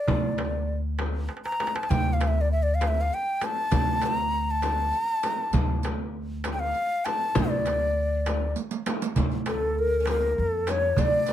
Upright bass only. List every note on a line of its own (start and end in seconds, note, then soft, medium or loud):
0.08 1.26 D2 medium
1.90 3.08 D2 medium
3.72 4.90 D2 medium
5.53 6.71 D2 medium
7.36 8.53 D2 medium
9.17 10.34 D2 medium
10.38 10.94 F2 medium
10.97 11.33 D2 medium